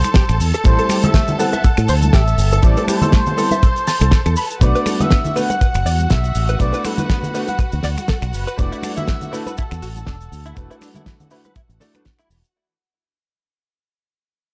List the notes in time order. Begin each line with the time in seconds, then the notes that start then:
Already playing: A4 C5 A5
0.03 finger snap, closed hi-hat, high conga, cabasa, shaker
0.14 G4, kick, snare, closed hi-hat, cabasa, shaker
0.29 A1, finger snap, closed hi-hat, cabasa
0.40 E2 A4, open hi-hat, cabasa, shaker
0.54 A4, closed hi-hat, cabasa, shaker
0.64 A1 G3 A3 C4 E4 A4 C5, kick, closed hi-hat, cabasa, shaker
0.79 A4, closed hi-hat, cabasa
0.89 G4, finger snap, open hi-hat, high conga, cabasa, shaker
1.03 A4 E5, closed hi-hat, high conga, low conga, cabasa, shaker
1.14 A3, kick, snare, closed hi-hat, cabasa, shaker
1.28 closed hi-hat, low conga, cabasa
1.39 G3 B3 C4 E4 A4 F#5, open hi-hat, cabasa, shaker
1.53 E5, closed hi-hat, high bongo, high conga, cabasa, shaker
1.64 A4, muted fingered electric bass stroke, kick, closed hi-hat, cabasa, shaker
1.77 A2, finger snap, closed hi-hat, cabasa
1.88 D2 C5, open hi-hat, cabasa, shaker
2.02 closed hi-hat, high conga, cabasa, shaker
2.13 A1 G4 E5, kick, snare, closed hi-hat, cabasa, shaker
2.27 closed hi-hat, cabasa
2.38 G1, open hi-hat, cabasa, shaker
2.52 A4, closed hi-hat, high bongo, cabasa, shaker
2.62 A1 G3 A3 C4 E4 A4 D5, kick, closed hi-hat, cabasa, shaker
2.77 A4, closed hi-hat, high bongo, cabasa
2.88 G4 C5, finger snap, open hi-hat, high conga, cabasa, shaker
3.02 A4, closed hi-hat, high conga, low conga, cabasa, shaker
3.12 A3, kick, snare, closed hi-hat, cabasa, shaker
3.26 closed hi-hat, low conga, cabasa
3.37 G3 B3 C4 E4 A4, open hi-hat, cabasa, shaker
3.51 E5, closed hi-hat, high bongo, high conga, cabasa, shaker
3.63 A4, kick, closed hi-hat, cabasa, shaker
3.76 closed hi-hat, cabasa
3.87 A5, snare, open hi-hat, cabasa, shaker
4.01 C2 A4, finger snap, closed hi-hat, high conga, cabasa, shaker
4.11 A4, kick, snare, closed hi-hat, cabasa, shaker
4.26 E2 A4, finger snap, closed hi-hat, cabasa
4.36 B4 B5, open hi-hat, cabasa, shaker
4.50 closed hi-hat, cabasa, shaker
4.61 B1 A3 B3 D4 F#4 B4 D5 F#5, kick, closed hi-hat, cabasa, shaker
4.75 B4, closed hi-hat, cabasa
4.86 A4, finger snap, open hi-hat, high conga, cabasa, shaker
5.00 B4 E5, closed hi-hat, high conga, low conga, cabasa, shaker
5.11 B3, kick, snare, closed hi-hat, cabasa, shaker
5.24 closed hi-hat, low conga, cabasa
5.35 A3 B3 D4 F#4 B4 F#5, open hi-hat, cabasa, shaker
5.50 F#5, closed hi-hat, high bongo, high conga, cabasa, shaker
5.61 B4, muted fingered electric bass stroke, kick, closed hi-hat, cabasa, shaker
5.74 F#1, finger snap, closed hi-hat, cabasa
5.85 E2 D5, open hi-hat, cabasa, shaker
5.99 closed hi-hat, high conga, cabasa, shaker
6.10 B1 A4 E5, kick, snare, closed hi-hat, cabasa, shaker
6.24 closed hi-hat, cabasa
6.35 A1, open hi-hat, cabasa, shaker
6.48 B4, closed hi-hat, high bongo, cabasa, shaker
6.59 B1 A3 B3 D4 F#4 B4 D5, kick, closed hi-hat, cabasa, shaker
6.73 B4, closed hi-hat, high bongo, cabasa
6.84 A4 B4, finger snap, open hi-hat, high conga, cabasa, shaker
6.98 B4, closed hi-hat, high conga, low conga, cabasa, shaker
7.09 B3, kick, snare, closed hi-hat, cabasa, shaker
7.23 closed hi-hat, low conga, cabasa
7.34 A3 B3 D4 F#4 B4, open hi-hat, cabasa, shaker
7.47 F#5, closed hi-hat, high bongo, high conga, cabasa, shaker
7.59 B4, kick, closed hi-hat, cabasa, shaker
7.72 D2, closed hi-hat, cabasa
7.83 D2 D5, snare, open hi-hat, cabasa, shaker
7.98 finger snap, closed hi-hat, high conga, cabasa, shaker
8.08 A4, kick, snare, closed hi-hat, cabasa, shaker
8.22 B1, finger snap, closed hi-hat, cabasa
8.33 F#1 B4, open hi-hat, cabasa, shaker
8.47 B4, closed hi-hat, cabasa, shaker
8.57 E1 A3 D4 E4 F#4 B4 D5, kick, closed hi-hat, cabasa, shaker
8.72 E4, closed hi-hat, cabasa
8.83 D4, finger snap, open hi-hat, high conga, cabasa, shaker
8.97 E4 E5, closed hi-hat, high conga, low conga, cabasa, shaker
9.08 E3, kick, snare, closed hi-hat, cabasa, shaker
9.21 closed hi-hat, low conga, cabasa
9.32 A3 D4 E4 F#4 A4 B4, open hi-hat, cabasa, shaker
9.46 B4, closed hi-hat, high bongo, high conga, cabasa, shaker
9.57 E4, muted fingered electric bass stroke, kick, closed hi-hat, cabasa, shaker
9.71 E2, finger snap, closed hi-hat, cabasa
9.82 A1 F#4, open hi-hat, cabasa, shaker
9.96 closed hi-hat, high conga, cabasa, shaker
10.06 E1 D4, kick, snare, closed hi-hat, cabasa, shaker
10.21 closed hi-hat, cabasa
10.32 D2, open hi-hat, cabasa, shaker
10.45 E4, closed hi-hat, high bongo, cabasa, shaker
10.55 E1 A3 D4 E4 F#4 B4, kick, closed hi-hat, cabasa, shaker
10.70 E4, closed hi-hat, high bongo, cabasa
10.81 D4, finger snap, open hi-hat, high conga, cabasa, shaker
10.95 E4, closed hi-hat, high bongo, high conga, low conga, cabasa, shaker
11.06 E3, kick, snare, closed hi-hat, cabasa, shaker
11.20 closed hi-hat, low conga, cabasa
11.30 A3 D4 E4 F#4 B4, open hi-hat, cabasa, shaker
11.44 B4, closed hi-hat, high bongo, high conga, cabasa, shaker
11.56 E4, kick, closed hi-hat, cabasa, shaker
11.69 A1, closed hi-hat, cabasa
11.80 A3 D4 E4 F#4 A4 D5, snare, open hi-hat, cabasa, shaker
11.94 A3 D4 E4 F#4 B4, finger snap, closed hi-hat, high conga, cabasa, shaker
12.05 kick, snare, closed hi-hat, cabasa, shaker
12.19 E4, finger snap, closed hi-hat, cabasa
12.30 E1 E3, open hi-hat, cabasa, shaker
12.44 closed hi-hat, cabasa